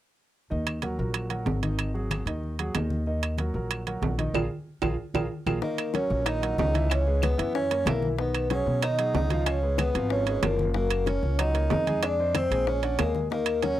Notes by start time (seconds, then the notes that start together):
0.50 D#2 D#3 D#4 D#5, high conga
0.67 high conga, high timbale, claves
0.82 F#3 F#4 A#4, high conga, high timbale, low timbale
0.99 A#1 F#3 F#4 A#4, high conga
1.14 high conga, high timbale, claves
1.30 F#3 F#4 A#4, high conga, high timbale
1.46 G#1, high conga, low timbale
1.62 D#3 D#4 D#5, high conga, high timbale
1.79 high conga, high timbale, claves
1.94 F#3 F#4 G#4, high conga
2.11 high conga, high timbale, low timbale, claves
2.26 D#2 D#3 D#4 D#5, high conga, high timbale
2.43 high conga
2.59 F#3 F#4 G#4, high conga, high timbale
2.75 D#2 D#3 D#4 D#5, high conga, high timbale, low timbale, claves
2.90 high conga
3.06 D#3 D#4 D#5, high conga
3.22 high conga, high timbale, claves
3.38 F#3 F#4 A#4, high conga, high timbale, low timbale
3.54 A#1 F#3 F#4 A#4, high conga
3.70 high conga, high timbale, claves
3.87 F#3 F#4 A#4, high conga, high timbale
4.02 A#1, high conga, low timbale
4.18 D#3 D#4 D#5, high conga, high timbale
4.34 A#1 F4 G#4 A#4, high conga, high timbale, claves
4.82 A#1 F4 G#4 A#4, high conga, high timbale, claves
5.14 A#1 F4 G#4 A#4, high conga, high timbale, claves
5.46 A#1 F4 G#4 A#4, high conga, high timbale, claves
5.62 D#3 A#3 D#4 A#4 D#5, high bongo, high conga
5.78 high conga, high timbale, claves
5.94 F#3 C#4 F#4 A#4 C#5, high bongo, high conga, high timbale, low timbale
6.10 A#1, high bongo, high conga
6.26 D#3 D#4 D#5, high bongo, high conga, high timbale, claves
6.42 F#3 F#4 A#4, high bongo, high conga, high timbale
6.58 C#2 D#4 D#5, high bongo, low bongo, high conga, low timbale
6.74 E3 E4 E5, high bongo, high conga, high timbale
6.90 C#4 C#5, high bongo, high conga, high timbale, claves
7.06 G#3 G#4 B4, high conga
7.22 B3 B4, high bongo, high conga, high timbale, low timbale, claves
7.37 F#2 E3 E4 E5, high bongo, high conga, high timbale
7.55 C#4 C#5, high bongo, high conga
7.70 A#3 A#4 C#5, high bongo, high conga, high timbale
7.86 B1 E3 A#3 E4 A#4 E5, high bongo, low bongo, high conga, high timbale, low timbale, claves
8.02 high bongo, high conga
8.18 D#3 B3 D#4 B4 D#5, high bongo
8.35 high conga, high timbale, claves
8.50 F#3 C#4 F#4 G#4 C#5, high bongo, high conga, high timbale, low timbale
8.66 B2, high bongo, high conga
8.82 D#3 D#4 D#5, high bongo, high conga, high timbale, claves
8.98 F#3 F#4 G#4, high bongo, high conga, high timbale
9.14 C#2 D#4 D#5, high bongo, low bongo, high conga, low timbale
9.30 F3 F4 F5, high bongo, high conga, high timbale
9.46 C#4 C#5, high bongo, high conga, high timbale, claves
9.62 G#3 G#4 B4, high conga
9.78 B3 B4, high bongo, high conga, high timbale, low timbale, claves
9.94 G#1 F3 F4 F5, high bongo, high conga, high timbale
10.10 C#4 C#5, high bongo, high conga
10.26 G#3 G#4 B4, high bongo, high conga, high timbale
10.43 F#1 F3 A#3 F4 A#4 F5, high bongo, low bongo, high conga, high timbale, low timbale, claves
10.59 high bongo, high conga
10.74 F#3 A#3 F#4 A#4 F#5, high bongo, high conga
10.90 high conga, high timbale, claves
11.06 A#3 C#4 A#4 C#5, high bongo, high conga, high timbale, low timbale
11.23 C#2, high bongo, high conga
11.38 F#3 D#4 F#4 D#5 F#5, high bongo, high conga, high timbale, claves
11.54 A#3 A#4 C#5, high bongo, high conga, high timbale
11.70 F2 D#4 D#5, high bongo, low bongo, high conga, low timbale
11.87 G#3 G#4 G#5, high bongo, high conga, high timbale
12.03 D4 D5, high bongo, high conga, high timbale, claves
12.19 C4 C5 D#5, high conga
12.35 C4 C5, high bongo, high conga, high timbale, low timbale, claves
12.51 A#1 G#3 G#4 G#5, high bongo, high conga, high timbale
12.67 C#4, high bongo, high conga
12.83 D4 D5 F#5, high bongo, high conga, high timbale
12.98 D#2 G#3 A#3 G#4 A#4 G#5, high bongo, low bongo, high conga, high timbale, low timbale, claves
13.15 high bongo, high conga
13.31 D#3 A#3 D#4 A#4 D#5, high bongo, high conga
13.46 high conga, high timbale, claves
13.62 F#3 C#4 F#4 A#4 C#5, high bongo, high conga, high timbale, low timbale